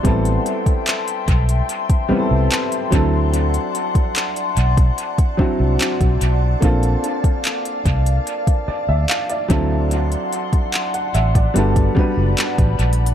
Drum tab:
HH |x--x--x--x--x--x--x--x--x--x--------x--x--x-----|x--x--x--x--x--x--x--x--x--x--------x--x--x-----|x--x--x--x--x--x--x--x--x--x--------x--x--x-----|x--x--x--x--x--x--x--x--x--x--------x--x--x-x-x-|
CP |------------x-----------------------x-----------|------------x-----------------------x-----------|------------x-----------------------x-----------|------------x-----------------------x-----------|
BD |o--------o--------o--------o--------------o-----|---------o-----------o-----o--o--------o--------|o--------o--------o--------o--------------o-----|---------o-----------o-----o--o--------o--------|